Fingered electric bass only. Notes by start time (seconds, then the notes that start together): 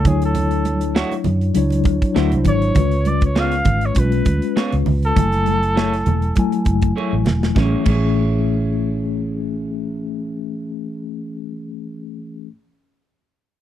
0.05 D2
1.26 F#2
1.56 C#2
1.86 D2
2.16 D2
2.33 C2
2.46 G#1
2.76 C#2
3.66 G#1
3.97 B1
4.26 D2
4.73 C#2
4.86 C#2
5.17 F#1
6.07 E1
6.67 F#1
7.13 A1
7.26 E1
7.56 A1
7.87 A1